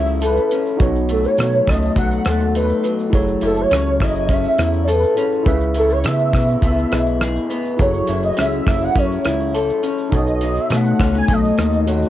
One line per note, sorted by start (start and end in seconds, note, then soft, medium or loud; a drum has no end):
0.00 0.39 C#2 medium
0.00 1.38 F#3 medium
0.00 0.51 C#4 medium
0.00 0.74 E4 medium
0.00 0.86 E4 medium
0.00 0.75 G#4 medium
0.00 0.76 A4 medium
0.00 0.76 C#5 medium
0.00 0.23 E5 loud
0.06 shaker medium
0.21 2.58 A4 medium
0.21 0.63 B4 medium
0.21 closed hi-hat medium
0.21 tambourine medium
0.21 shaker medium
0.36 shaker medium
0.50 0.86 C#4 medium
0.50 closed hi-hat medium
0.50 tambourine soft
0.50 shaker soft
0.65 tambourine soft
0.65 shaker soft
0.77 1.27 B1 loud
0.77 3.13 B2 medium
0.77 3.07 D#4 medium
0.77 3.08 F#4 medium
0.77 3.09 A4 medium
0.77 kick loud
0.77 closed hi-hat medium
0.77 tambourine soft
0.77 shaker medium
0.82 3.10 C#5 medium
0.95 shaker medium
1.09 1.67 A3 medium
1.09 1.27 A4 medium
1.09 closed hi-hat medium
1.09 tambourine soft
1.09 shaker medium
1.24 1.70 C#5 loud
1.24 tambourine soft
1.24 shaker medium
1.37 1.61 B2 loud
1.37 1.96 F#3 medium
1.37 cross-stick loud
1.37 closed hi-hat medium
1.37 tambourine medium
1.37 shaker medium
1.53 shaker soft
1.67 1.91 C#2 loud
1.67 2.26 A3 medium
1.67 1.97 D#5 loud
1.67 kick medium
1.67 cross-stick loud
1.67 closed hi-hat medium
1.67 tambourine soft
1.67 shaker soft
1.82 tambourine soft
1.82 shaker medium
1.96 2.20 B1 medium
1.96 2.83 F#3 medium
1.96 2.52 F#5 loud
1.96 kick medium
1.96 closed hi-hat medium
1.96 tambourine medium
1.96 shaker medium
2.11 tambourine soft
2.11 shaker medium
2.25 2.72 D#2 medium
2.25 3.71 A3 medium
2.25 cross-stick medium
2.25 closed hi-hat medium
2.25 tambourine medium
2.25 shaker medium
2.40 shaker soft
2.55 3.19 D#4 medium
2.55 2.96 B4 medium
2.55 closed hi-hat medium
2.55 tambourine medium
2.55 shaker medium
2.69 shaker medium
2.84 3.13 F#3 medium
2.84 closed hi-hat soft
2.84 tambourine soft
2.84 shaker medium
2.99 tambourine soft
2.99 shaker soft
3.10 3.36 F#1 loud
3.10 5.46 F#3 medium
3.10 5.11 E4 medium
3.10 5.12 G#4 medium
3.10 5.13 A4 medium
3.10 kick loud
3.10 closed hi-hat medium
3.10 tambourine soft
3.10 shaker medium
3.15 5.14 C#5 medium
3.28 shaker medium
3.41 3.65 F#1 loud
3.41 4.00 E4 medium
3.41 3.62 A4 medium
3.41 closed hi-hat soft
3.41 tambourine medium
3.41 shaker soft
3.56 shaker medium
3.61 4.04 C#5 loud
3.71 4.02 C#2 loud
3.71 4.30 C#4 medium
3.71 cross-stick loud
3.71 closed hi-hat medium
3.71 tambourine medium
3.71 shaker medium
3.85 shaker soft
4.00 4.47 F#1 loud
4.00 4.58 E4 medium
4.00 4.34 D#5 loud
4.00 kick loud
4.00 cross-stick loud
4.00 closed hi-hat medium
4.00 tambourine soft
4.00 shaker soft
4.15 tambourine soft
4.15 shaker medium
4.29 5.17 C#4 medium
4.29 4.85 E5 loud
4.29 kick medium
4.29 closed hi-hat medium
4.29 tambourine medium
4.29 shaker medium
4.44 tambourine soft
4.44 shaker medium
4.59 5.05 E2 loud
4.59 5.75 E4 medium
4.59 cross-stick medium
4.59 closed hi-hat medium
4.59 tambourine soft
4.59 shaker medium
4.73 shaker soft
4.84 4.94 C#5 medium
4.88 5.52 A4 medium
4.88 closed hi-hat medium
4.88 tambourine medium
4.88 shaker medium
4.92 5.34 B4 medium
5.03 shaker medium
5.15 6.04 C#4 medium
5.15 5.42 E4 medium
5.15 5.43 G#4 soft
5.15 5.46 A4 soft
5.15 5.47 C#5 medium
5.15 closed hi-hat medium
5.15 tambourine soft
5.15 shaker medium
5.32 shaker medium
5.43 6.06 C#2 loud
5.43 7.79 C#3 medium
5.43 6.87 E4 medium
5.43 6.88 G#4 medium
5.43 6.89 B4 medium
5.43 kick loud
5.43 closed hi-hat medium
5.43 tambourine soft
5.43 shaker medium
5.48 6.90 E5 medium
5.60 shaker medium
5.74 6.33 E4 medium
5.74 5.93 A4 loud
5.74 closed hi-hat medium
5.74 tambourine soft
5.74 shaker medium
5.90 6.07 C#5 loud
5.90 tambourine soft
5.90 shaker medium
6.04 6.35 C#3 loud
6.04 6.62 B3 medium
6.04 6.62 E5 loud
6.04 cross-stick loud
6.04 closed hi-hat medium
6.04 tambourine medium
6.04 shaker medium
6.18 shaker soft
6.33 6.57 B2 medium
6.33 6.91 E4 medium
6.33 kick medium
6.33 cross-stick medium
6.33 closed hi-hat soft
6.33 tambourine soft
6.33 shaker soft
6.48 shaker medium
6.62 6.86 C#2 medium
6.62 7.49 B3 medium
6.62 7.17 E5 loud
6.62 kick medium
6.62 closed hi-hat medium
6.62 tambourine medium
6.62 shaker medium
6.78 shaker medium
6.91 7.39 B1 medium
6.91 7.75 E4 soft
6.91 8.08 E4 medium
6.91 7.77 G#4 soft
6.91 7.79 B4 soft
6.91 7.80 D#5 medium
6.91 cross-stick medium
6.91 closed hi-hat medium
6.91 tambourine soft
6.91 shaker medium
7.06 shaker medium
7.21 7.85 G#4 medium
7.21 cross-stick medium
7.21 closed hi-hat medium
7.21 tambourine medium
7.21 shaker medium
7.36 shaker soft
7.50 7.85 B3 medium
7.50 closed hi-hat medium
7.50 tambourine soft
7.50 shaker soft
7.65 tambourine soft
7.65 shaker soft
7.77 8.03 F#1 loud
7.77 10.71 F#3 medium
7.77 10.07 E4 medium
7.77 10.08 G#4 medium
7.77 10.09 A4 medium
7.77 kick loud
7.77 closed hi-hat medium
7.77 tambourine soft
7.77 shaker medium
7.81 8.21 C#5 medium
7.81 10.10 C#5 medium
7.94 shaker medium
8.07 8.32 F#1 loud
8.07 8.66 E4 medium
8.07 closed hi-hat medium
8.07 tambourine soft
8.07 shaker medium
8.22 8.40 D#5 loud
8.22 shaker medium
8.37 8.61 C#2 loud
8.37 8.95 C#4 medium
8.37 8.85 E5 loud
8.37 cross-stick loud
8.37 closed hi-hat medium
8.37 tambourine medium
8.37 shaker medium
8.52 shaker soft
8.67 8.90 F#1 medium
8.67 9.24 E4 medium
8.67 kick loud
8.67 cross-stick medium
8.67 closed hi-hat soft
8.67 tambourine soft
8.67 shaker medium
8.81 8.99 F#5 loud
8.81 tambourine soft
8.81 shaker medium
8.95 9.19 F#2 medium
8.95 9.82 C#4 medium
8.95 9.84 C#5 medium
8.95 kick medium
8.95 closed hi-hat medium
8.95 tambourine medium
8.95 shaker medium
9.11 tambourine soft
9.11 shaker medium
9.25 9.72 C#2 medium
9.25 10.18 E4 medium
9.25 cross-stick medium
9.25 closed hi-hat medium
9.25 tambourine soft
9.25 shaker medium
9.39 shaker soft
9.54 10.45 A4 medium
9.54 closed hi-hat medium
9.54 tambourine medium
9.54 shaker medium
9.69 shaker medium
9.83 10.18 C#4 medium
9.83 closed hi-hat medium
9.83 tambourine soft
9.83 shaker medium
9.98 tambourine soft
9.98 shaker soft
10.10 10.59 B1 loud
10.10 12.09 B2 medium
10.10 11.83 D#4 medium
10.10 11.83 F#4 medium
10.10 11.84 A4 medium
10.10 kick medium
10.10 closed hi-hat medium
10.10 tambourine soft
10.10 shaker medium
10.15 11.85 C#5 medium
10.15 10.62 D#5 medium
10.27 shaker medium
10.41 11.00 D#4 medium
10.41 closed hi-hat medium
10.41 tambourine soft
10.41 shaker medium
10.56 shaker medium
10.60 10.77 E5 medium
10.70 10.94 B2 loud
10.70 11.29 A3 medium
10.70 cross-stick loud
10.70 closed hi-hat medium
10.70 tambourine medium
10.70 shaker medium
10.76 11.17 F#5 loud
10.85 shaker medium
10.99 11.23 C#2 loud
10.99 11.15 C#4 medium
10.99 kick loud
10.99 cross-stick loud
10.99 closed hi-hat soft
10.99 tambourine soft
10.99 shaker soft
11.14 11.57 D#4 medium
11.14 tambourine soft
11.14 shaker medium
11.18 11.34 G#5 loud
11.28 11.52 B1 loud
11.28 12.09 A3 medium
11.28 kick medium
11.28 closed hi-hat medium
11.28 tambourine medium
11.28 shaker medium
11.33 12.09 D#5 medium
11.44 tambourine soft
11.44 shaker medium
11.58 12.05 D#2 loud
11.58 12.09 D#4 medium
11.58 cross-stick medium
11.58 closed hi-hat medium
11.58 tambourine soft
11.58 shaker medium
11.72 shaker medium
11.86 12.09 D#4 medium
11.86 12.09 F#4 soft
11.86 12.09 F#4 medium
11.86 12.09 A4 soft
11.86 12.09 C#5 medium
11.86 closed hi-hat medium
11.86 tambourine medium
11.86 shaker medium
12.02 shaker medium